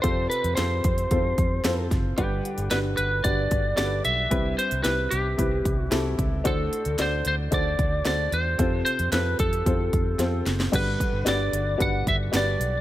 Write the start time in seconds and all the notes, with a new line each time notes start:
0.02 F2 C3 C4 F4 A4 C5, kick, closed hi-hat
0.30 B4, closed hi-hat
0.44 F2, closed hi-hat
0.55 F2 C4 F4 A4 C5, snare, closed hi-hat
0.84 F2, kick, closed hi-hat
0.98 closed hi-hat
1.11 F2 C4 F4 A4 C5, kick, closed hi-hat
1.38 F2, kick, closed hi-hat
1.64 F2 C4 F4 A4 C5, snare, closed hi-hat
1.91 F#1, kick, snare, closed hi-hat
2.18 G1 G2 D3 D4 G4 B4 F#5, kick, closed hi-hat
2.45 closed hi-hat
2.58 G1, closed hi-hat
2.71 G1 D4 F#4 G4 B4, snare, closed hi-hat
2.97 G1 B4, closed hi-hat
3.24 G1 D4 F#4 G4 B4 D5, kick, closed hi-hat
3.51 G1, kick, closed hi-hat
3.77 G1 D4 F#4 G4 A4 D5, snare, closed hi-hat
3.84 B4
4.05 B1 E5, closed hi-hat
4.31 C2 G2 C4 E4 G4 B4, kick, closed hi-hat
4.58 C5, closed hi-hat
4.71 C2, closed hi-hat
4.83 C2 C4 E4 G4 B4, snare, closed hi-hat
5.11 C2 G4, closed hi-hat
5.37 C2 C4 E4 G4 B4, kick, closed hi-hat
5.65 C2, kick, closed hi-hat
5.80 F#4
5.90 C2 C4 E4 G4 A4, snare, closed hi-hat
6.19 C#2, kick, closed hi-hat
6.44 D2 A2 D4 F#4 A4 C5, kick, closed hi-hat
6.73 closed hi-hat
6.85 D2, closed hi-hat
6.98 D2 D4 F#4 A4 C5 D5, snare, closed hi-hat
7.25 D2 C5, closed hi-hat
7.51 D2 D4 F#4 A4 C5 D5, kick, closed hi-hat
7.79 D2, kick, closed hi-hat
8.05 D2 D4 F#4 A4 C5 D5, snare, closed hi-hat
8.32 E2 C5, closed hi-hat
8.58 F2 C3 C4 F4 A4 C5, kick, closed hi-hat
8.85 C5, closed hi-hat
8.99 F2, closed hi-hat
9.12 F2 C4 F4 A4 B4 C5, snare, closed hi-hat
9.39 F2 A4, kick, closed hi-hat
9.53 closed hi-hat
9.66 F2 C4 F4 A4 C5, kick, closed hi-hat
9.93 F2, kick, closed hi-hat
10.18 F2 C4 F4 A4 C5, snare, closed hi-hat
10.46 F#1, snare, closed hi-hat
10.60 snare
10.72 G1 G2 D3 D4 F#4 G4 B4, kick, closed hi-hat, crash
11.00 kick, closed hi-hat
11.13 G1
11.25 G1 D4 F#4 G4 B4 D5, snare, closed hi-hat
11.53 G1, closed hi-hat
11.78 G1 D4 F#4 G4 B4, kick, closed hi-hat
11.82 F#5
12.07 G1 E5, kick, closed hi-hat
12.32 G1 D4 F#4 G4 B4, snare, closed hi-hat
12.37 D5
12.60 B1, closed hi-hat